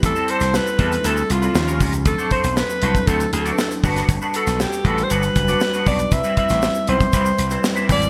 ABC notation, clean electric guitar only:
X:1
M:4/4
L:1/16
Q:1/4=118
K:G
V:1 name="Clean electric guitar"
z [G,CEA] [G,CEA] z3 [G,CEA] z [G,CEA] z2 [G,CEB] z [G,_D=F_B] [G,DFB] z | z [A,DFc] [A,DFc] z3 [A,DFc] z [A,DFc] z2 [A,DFd] z2 [B,DFB] [B,DFB] | z [B,DFB] [B,DFB] z3 [B,DFB] z [B,DFB] z2 [B,DFd] z [B,DFB] [B,DFB] z | z [G,CEB] [G,CEB] z3 [G,CEB] z [G,CEB] z2 [G,CEc] z [G,CEB] [G,CEB] z |]